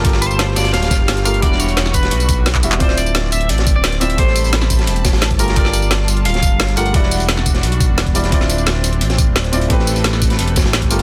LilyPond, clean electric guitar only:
\new Staff \with { instrumentName = "Clean electric guitar" } { \time 4/4 \key d \minor \tempo 4 = 174 r8 c''4 d''8 f''4. f''8 | d''8 cis''4 b'2 r8 | c''8 d''4 e''8 d''8. d''8. e''8 | c''4 r2 r8 bes'8 |
d''2 f''4. fis''8~ | fis''4. r2 r8 | r1 | r1 | }